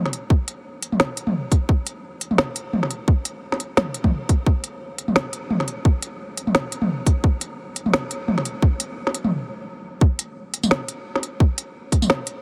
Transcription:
0.06 snare soft
0.13 closed hi-hat medium
0.30 kick loud
0.48 closed hi-hat medium
0.82 closed hi-hat medium
0.92 mid tom medium
1.00 snare loud
1.17 closed hi-hat medium
1.27 mid tom medium
1.52 kick loud
1.52 closed hi-hat medium
1.69 kick loud
1.87 closed hi-hat medium
2.21 closed hi-hat medium
2.31 mid tom soft
2.38 snare loud
2.56 closed hi-hat medium
2.73 mid tom medium
2.83 snare soft
2.91 closed hi-hat medium
3.08 kick loud
3.25 closed hi-hat medium
3.52 snare soft
3.60 closed hi-hat medium
3.77 snare loud
3.77 closed hi-hat soft
3.77 mid tom soft
3.94 closed hi-hat medium
4.04 kick medium
4.04 mid tom medium
4.29 kick loud
4.29 closed hi-hat medium
4.46 kick loud
4.64 closed hi-hat medium
4.98 closed hi-hat medium
5.08 mid tom soft
5.16 snare loud
5.33 closed hi-hat medium
5.50 mid tom medium
5.60 snare soft
5.68 closed hi-hat medium
5.85 kick loud
6.02 closed hi-hat medium
6.37 closed hi-hat medium
6.47 mid tom soft
6.55 snare loud
6.72 closed hi-hat medium
6.82 mid tom medium
7.06 kick loud
7.06 closed hi-hat medium
7.24 kick loud
7.41 closed hi-hat medium
7.76 closed hi-hat medium
7.86 mid tom soft
7.93 snare loud
8.11 closed hi-hat medium
8.28 mid tom medium
8.38 snare soft
8.45 closed hi-hat medium
8.62 kick loud
8.80 closed hi-hat medium
9.07 snare soft
9.14 closed hi-hat medium
9.24 mid tom medium
10.01 kick loud
10.19 closed hi-hat medium
10.54 closed hi-hat medium
10.63 mid tom medium
10.63 tambourine soft
10.71 snare loud
10.88 closed hi-hat medium
11.15 snare soft
11.23 closed hi-hat medium
11.40 kick loud
11.58 closed hi-hat medium
11.92 kick medium
11.92 closed hi-hat medium
12.02 mid tom medium
12.02 tambourine soft
12.10 snare loud
12.27 closed hi-hat medium

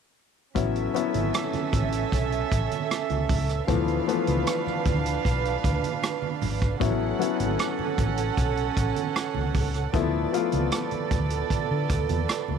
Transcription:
0.55 0.86 A1 medium
0.55 0.89 F#3 medium
0.55 0.89 B3 medium
0.55 3.65 C#4 medium
0.55 0.89 C#4 medium
0.55 0.90 E4 medium
0.55 3.65 A4 medium
0.55 3.65 E5 medium
0.55 kick medium
0.55 closed hi-hat medium
0.55 low conga medium
0.76 closed hi-hat soft
0.94 2.27 F#3 medium
0.94 2.28 B3 medium
0.94 2.28 C#4 medium
0.94 2.28 E4 medium
0.94 closed hi-hat medium
0.94 muted conga soft
1.14 1.30 G#1 medium
1.14 closed hi-hat soft
1.14 high conga medium
1.34 cross-stick loud
1.34 closed hi-hat medium
1.34 muted conga soft
1.53 muted fingered electric bass stroke soft
1.53 cross-stick soft
1.53 closed hi-hat soft
1.53 high conga medium
1.73 2.04 A1 medium
1.73 kick medium
1.73 closed hi-hat medium
1.73 high conga medium
1.92 closed hi-hat medium
2.12 2.43 B1 medium
2.12 kick medium
2.12 closed hi-hat medium
2.12 muted conga soft
2.32 closed hi-hat soft
2.52 2.67 A1 medium
2.52 kick medium
2.52 closed hi-hat medium
2.71 closed hi-hat soft
2.71 high conga medium
2.90 cross-stick loud
2.90 closed hi-hat medium
2.90 muted conga soft
3.10 3.26 C#2 medium
3.10 closed hi-hat soft
3.10 high conga medium
3.29 3.60 C#2 medium
3.29 kick medium
3.29 open hi-hat medium
3.29 muted conga soft
3.29 low conga medium
3.49 cross-stick soft
3.49 closed hi-hat soft
3.67 3.99 D2 medium
3.67 4.02 E3 medium
3.67 4.01 F3 medium
3.67 4.01 A3 medium
3.67 4.02 B3 medium
3.67 6.77 D4 medium
3.67 6.77 B4 medium
3.67 6.77 F5 medium
3.67 kick loud
3.67 closed hi-hat medium
3.67 low conga medium
3.88 closed hi-hat soft
4.07 5.41 E3 medium
4.07 5.40 F3 medium
4.07 5.40 A3 medium
4.07 5.41 B3 medium
4.07 closed hi-hat medium
4.27 4.43 C#2 medium
4.27 closed hi-hat soft
4.27 high conga medium
4.47 cross-stick loud
4.47 closed hi-hat medium
4.67 muted fingered electric bass stroke soft
4.67 cross-stick soft
4.67 high conga medium
4.86 5.16 D2 medium
4.86 kick medium
4.86 closed hi-hat medium
4.86 muted conga soft
4.86 high conga medium
5.06 closed hi-hat medium
5.25 5.55 B1 medium
5.25 kick medium
5.25 closed hi-hat medium
5.25 muted conga soft
5.45 closed hi-hat soft
5.64 5.79 D2 medium
5.64 kick medium
5.64 closed hi-hat medium
5.64 muted conga soft
5.84 closed hi-hat soft
5.84 high conga medium
6.03 cross-stick loud
6.03 closed hi-hat medium
6.03 muted conga soft
6.22 high conga medium
6.42 6.73 G#1 medium
6.42 open hi-hat medium
6.42 low conga medium
6.62 kick medium
6.62 cross-stick soft
6.62 closed hi-hat soft
6.80 7.12 A1 medium
6.80 7.14 F#3 medium
6.80 7.14 B3 medium
6.80 9.90 C#4 medium
6.80 7.14 C#4 medium
6.80 7.15 E4 medium
6.80 9.90 A4 medium
6.80 9.90 F#5 medium
6.80 kick loud
6.80 closed hi-hat medium
6.80 muted conga soft
6.80 low conga medium
7.19 8.53 F#3 medium
7.19 8.53 B3 medium
7.19 8.53 C#4 medium
7.19 8.54 E4 medium
7.19 closed hi-hat medium
7.19 muted conga soft
7.40 7.55 G#1 medium
7.40 closed hi-hat soft
7.40 high conga medium
7.59 cross-stick loud
7.59 closed hi-hat medium
7.79 muted fingered electric bass stroke soft
7.79 high conga medium
7.98 8.29 A1 medium
7.98 kick medium
7.98 closed hi-hat medium
7.98 high conga medium
8.17 closed hi-hat medium
8.37 8.68 B1 medium
8.37 kick medium
8.37 closed hi-hat medium
8.37 muted conga soft
8.57 closed hi-hat soft
8.77 8.92 A1 medium
8.77 kick medium
8.77 closed hi-hat medium
8.96 closed hi-hat soft
8.96 high conga medium
9.16 cross-stick loud
9.16 closed hi-hat medium
9.35 9.51 C#2 medium
9.35 high conga medium
9.54 9.85 C#2 medium
9.54 kick medium
9.54 open hi-hat medium
9.54 muted conga soft
9.54 low conga medium
9.74 cross-stick soft
9.74 closed hi-hat soft
9.93 10.24 D2 medium
9.93 10.27 F3 medium
9.93 10.27 A3 medium
9.93 12.58 B3 medium
9.93 10.28 B3 medium
9.93 10.28 E4 medium
9.93 12.58 A4 medium
9.93 12.58 D5 medium
9.93 kick medium
9.93 closed hi-hat medium
9.93 muted conga soft
9.93 low conga medium
10.32 11.66 F3 medium
10.32 11.66 A3 medium
10.32 11.66 B3 medium
10.32 11.67 F4 medium
10.32 closed hi-hat medium
10.52 10.68 C#2 medium
10.52 closed hi-hat soft
10.52 high conga medium
10.72 cross-stick loud
10.72 closed hi-hat medium
10.72 muted conga soft
10.91 muted fingered electric bass stroke soft
10.91 closed hi-hat soft
10.91 high conga soft
11.11 11.42 D2 medium
11.11 kick medium
11.11 closed hi-hat medium
11.11 muted conga soft
11.11 high conga medium
11.30 closed hi-hat medium
11.50 kick medium
11.50 closed hi-hat medium
11.50 high conga soft
11.71 11.86 D3 medium
11.90 12.05 D2 medium
11.90 kick medium
11.90 closed hi-hat medium
11.90 muted conga soft
12.09 12.25 E2 medium
12.09 closed hi-hat soft
12.09 high conga medium
12.29 cross-stick loud
12.29 closed hi-hat medium
12.29 muted conga soft
12.48 12.58 D2 medium
12.48 high conga medium

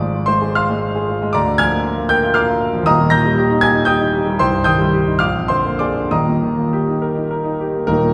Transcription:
0.00 1.30 G#1 medium
0.00 1.29 G#2 medium
0.00 1.37 F3 soft
0.00 0.23 G#3 soft
0.00 0.24 D5 medium
0.00 0.28 D6 loud
0.14 0.37 F4 soft
0.26 0.51 G#3 medium
0.26 0.55 C5 medium
0.26 0.55 C6 loud
0.42 0.65 G#4 medium
0.55 0.78 F4 medium
0.55 1.30 F5 medium
0.55 1.31 C6 medium
0.55 1.34 F6 loud
0.70 0.91 G#3 medium
0.82 1.04 F4 medium
0.95 1.17 G#4 medium
1.09 1.30 F4 medium
1.22 1.35 G#3 medium
1.33 2.82 D2 medium
1.33 1.58 D5 medium
1.33 1.58 A#5 medium
1.33 1.59 D6 medium
1.47 1.67 D3 medium
1.58 1.80 F3 medium
1.58 2.07 G#5 medium
1.58 2.07 F6 medium
1.58 2.10 G#6 loud
1.72 1.93 A#3 medium
1.83 2.05 F4 medium
1.97 2.18 A#3 medium
2.09 2.31 A#4 medium
2.09 2.34 G5 medium
2.09 2.35 G6 loud
2.24 2.44 F4 medium
2.34 2.55 A#4 medium
2.34 2.82 F5 medium
2.34 2.82 D6 medium
2.34 2.85 F6 loud
2.48 2.68 F4 medium
2.60 2.81 A#3 medium
2.73 2.86 F3 medium
2.83 4.33 D#2 medium
2.83 3.11 D#6 loud
2.87 4.35 D#1 medium
2.87 3.10 D#5 medium
2.87 3.10 A#5 medium
2.99 3.19 A#2 medium
3.10 3.31 D#3 medium
3.10 3.58 A#5 medium
3.10 3.58 G6 medium
3.10 3.61 A#6 loud
3.25 3.44 G3 medium
3.38 3.57 G4 medium
3.50 3.69 D#4 medium
3.61 3.82 G4 medium
3.61 3.85 G#5 medium
3.61 3.86 G#6 loud
3.74 3.94 D#4 medium
3.85 4.07 G4 medium
3.85 4.35 G5 medium
3.85 4.35 D#6 medium
3.85 4.38 G6 loud
4.00 4.20 D#4 medium
4.14 4.34 G4 medium
4.26 4.39 G3 medium
4.39 5.19 C2 medium
4.39 4.64 C5 medium
4.39 4.64 G5 medium
4.39 4.66 C6 loud
4.53 4.74 G2 medium
4.64 4.87 D#3 medium
4.64 5.16 G5 medium
4.64 5.16 D#6 medium
4.64 5.20 G6 loud
4.78 5.00 G3 medium
4.93 5.15 G4 medium
5.06 5.20 D#4 medium
5.19 6.07 A#1 medium
5.19 5.47 F5 medium
5.19 5.47 D6 medium
5.19 5.48 F6 loud
5.36 5.58 F2 medium
5.48 5.73 D3 medium
5.48 5.77 C5 medium
5.48 5.78 C6 loud
5.65 5.88 A#3 medium
5.79 6.04 G#4 medium
5.79 6.08 D5 medium
5.79 6.09 D6 medium
5.97 6.11 D4 medium
6.11 7.86 D#1 medium
6.11 7.86 D#2 medium
6.11 7.58 D#5 medium
6.11 7.57 A#5 medium
6.11 7.61 D#6 medium
6.28 6.51 A#2 soft
6.42 6.66 D#3 soft
6.57 6.81 A#3 soft
6.73 6.96 G4 medium
6.87 7.10 D#4 medium
7.02 7.25 A#4 medium
7.16 7.39 D#4 soft
7.31 7.54 A#4 medium
7.44 7.69 D#4 medium
7.60 7.83 G4 soft
7.73 7.88 A#3 soft
7.87 8.14 D#1 medium
7.87 8.14 D#2 medium
7.87 8.14 D#4 medium
7.87 8.14 A#4 medium
8.03 8.14 A#2 medium

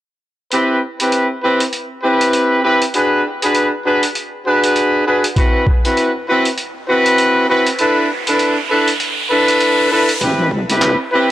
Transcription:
0.51 0.80 C4 medium
0.51 0.80 E4 medium
0.51 0.80 G4 medium
0.51 0.80 B4 medium
0.51 closed hi-hat medium
1.00 1.27 C4 medium
1.00 1.27 E4 medium
1.00 1.27 G4 medium
1.00 1.27 B4 medium
1.00 closed hi-hat medium
1.12 closed hi-hat soft
1.42 1.62 C4 medium
1.42 1.62 E4 medium
1.42 1.62 G4 medium
1.42 1.62 B4 medium
1.60 closed hi-hat medium
1.73 closed hi-hat medium
2.03 2.60 C4 medium
2.03 2.60 E4 medium
2.03 2.60 G4 medium
2.03 2.60 B4 loud
2.21 closed hi-hat medium
2.33 closed hi-hat medium
2.63 2.83 C4 medium
2.63 2.83 E4 medium
2.63 2.83 G4 medium
2.63 2.83 B4 medium
2.82 closed hi-hat medium
2.94 3.22 D4 medium
2.94 3.22 F#4 medium
2.94 3.22 G#4 medium
2.94 3.22 B4 medium
2.94 closed hi-hat medium
3.42 3.70 D4 medium
3.42 3.70 F#4 medium
3.42 3.70 G#4 medium
3.42 3.70 B4 medium
3.42 closed hi-hat medium
3.55 closed hi-hat medium
3.85 4.05 D4 medium
3.85 4.05 F#4 medium
3.85 4.05 G#4 medium
3.85 4.05 B4 medium
4.03 closed hi-hat medium
4.15 closed hi-hat medium
4.45 5.03 D4 medium
4.45 5.03 F#4 medium
4.45 5.03 G#4 medium
4.45 5.03 B4 loud
4.64 closed hi-hat medium
4.76 closed hi-hat medium
5.06 5.26 D4 medium
5.06 5.26 F#4 medium
5.06 5.26 G#4 medium
5.06 5.26 B4 medium
5.24 closed hi-hat medium
5.36 5.65 C4 medium
5.36 5.65 E4 medium
5.36 5.65 F#4 medium
5.36 5.65 B4 medium
5.36 kick loud
5.36 closed hi-hat medium
5.36 riser medium
5.67 kick loud
5.85 6.12 C4 medium
5.85 6.12 E4 medium
5.85 6.12 F#4 medium
5.85 6.12 B4 medium
5.85 closed hi-hat medium
5.97 closed hi-hat medium
6.27 6.47 C4 medium
6.27 6.47 E4 medium
6.27 6.47 F#4 medium
6.27 6.47 B4 medium
6.45 closed hi-hat medium
6.58 closed hi-hat medium
6.88 7.45 C4 medium
6.88 7.45 E4 medium
6.88 7.45 F#4 medium
6.88 7.45 B4 loud
7.06 closed hi-hat medium
7.18 closed hi-hat medium
7.48 7.68 C4 medium
7.48 7.68 E4 medium
7.48 7.68 F#4 medium
7.48 7.68 B4 loud
7.67 closed hi-hat medium
7.79 8.07 D4 medium
7.79 8.07 E4 medium
7.79 8.07 A4 medium
7.79 8.07 B4 medium
7.79 closed hi-hat soft
8.27 8.55 D4 medium
8.27 8.55 E4 medium
8.27 8.55 A4 medium
8.27 8.55 B4 medium
8.27 closed hi-hat medium
8.39 closed hi-hat soft
8.70 8.90 D4 medium
8.70 8.90 E4 medium
8.70 8.90 A4 medium
8.70 8.90 B4 medium
8.88 closed hi-hat medium
9.00 closed hi-hat medium
9.30 9.88 D4 medium
9.30 9.88 E4 medium
9.30 9.88 A4 medium
9.30 9.88 B4 loud
9.48 closed hi-hat medium
9.61 closed hi-hat medium
9.91 10.11 D4 medium
9.91 10.11 E4 medium
9.91 10.11 A4 medium
9.91 10.11 B4 medium
10.09 closed hi-hat medium
10.21 10.49 A1 loud
10.21 10.50 C4 medium
10.21 10.50 E4 medium
10.21 10.50 G4 medium
10.21 10.50 B4 medium
10.21 kick loud
10.21 closed hi-hat medium
10.21 riser medium
10.51 10.97 C2 loud
10.51 kick loud
10.69 10.97 C4 medium
10.69 10.97 E4 medium
10.69 10.97 G4 medium
10.69 10.97 B4 medium
10.69 closed hi-hat medium
10.82 clap loud
10.82 closed hi-hat medium
11.12 11.31 C4 medium
11.12 11.31 E4 medium
11.12 11.31 G4 medium
11.12 11.31 B4 medium

